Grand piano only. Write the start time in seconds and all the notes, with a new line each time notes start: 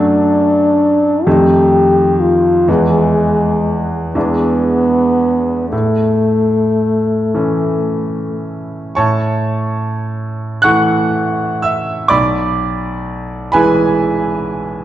Already playing: F#2 F#3 A3 D4
1.26 F2 D#3 A3 D#4
2.68 E2 E3 B3
4.15 E2 E3 G#3 D4
5.72 A2
7.34 E3 A3 C#4
8.95 A2 C#5 A5 C#6
10.62 E3 A3 E4 F#5 C#6 F#6
11.62 E5 E6
12.08 B1 D5 B5 D6
13.52 E3 G#3 E4 B4 G#5 B5